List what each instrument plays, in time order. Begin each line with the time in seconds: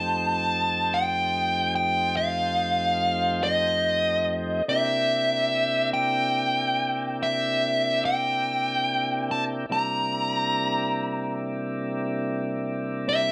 Already playing: tonewheel organ F2 A3 C4 D#4 G4, lead electric guitar A5
0.94 lead electric guitar G5
1.76 lead electric guitar G5
2.17 lead electric guitar F5
3.43 lead electric guitar D#5
4.69 tonewheel organ C3 A#3 D4 E4 G4, lead electric guitar E5
5.94 lead electric guitar G5
7.23 lead electric guitar E5
8.05 lead electric guitar G5
9.31 lead electric guitar A5
9.69 tonewheel organ C3 G3 A#3 D4 E4, lead electric guitar A#5
13.09 lead electric guitar E5